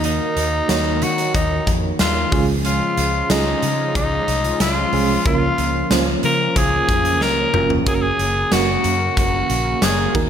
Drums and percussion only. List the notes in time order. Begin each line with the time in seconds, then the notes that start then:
0.04 closed hi-hat
0.37 closed hi-hat
0.69 snare, closed hi-hat, tambourine
1.02 closed hi-hat
1.18 closed hi-hat
1.34 kick, closed hi-hat
1.67 kick, closed hi-hat
1.99 snare, closed hi-hat, tambourine
2.32 kick, open hi-hat
2.65 closed hi-hat
2.97 closed hi-hat
3.30 snare, closed hi-hat, tambourine
3.63 closed hi-hat
3.95 kick, closed hi-hat
4.28 closed hi-hat
4.44 closed hi-hat
4.60 snare, closed hi-hat, tambourine
4.93 open hi-hat
5.25 kick, closed hi-hat
5.58 closed hi-hat
5.91 snare, closed hi-hat, tambourine
6.23 closed hi-hat
6.56 kick, closed hi-hat
6.89 kick, closed hi-hat
7.05 closed hi-hat
7.21 snare
7.54 mid tom
7.70 floor tom
7.86 kick, closed hi-hat
8.19 closed hi-hat
8.52 snare, closed hi-hat, tambourine
8.84 closed hi-hat
9.17 kick, closed hi-hat
9.50 closed hi-hat
9.82 snare, closed hi-hat, tambourine
10.15 kick, crash